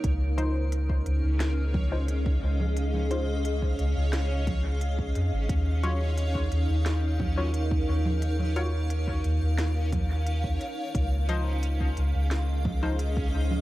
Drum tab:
HH |x-x-x-x-x---x---|x-x-x-x-x-x-x-x-|x-x-x-x-x---x---|x-x-x-x-x-x-x-x-|
SD |--------o-------|--------o-------|--------o-------|--------o-------|
CG |----------O----O|-O--------O-----|----------O----O|-O--------O-----|
BD |o----o----o--o--|-----o----o--o--|o----o----o--o--|-----o----o--o--|

HH |x-x-x-x-x---x---|
SD |--------o-------|
CG |----------O----O|
BD |o----o----o--o--|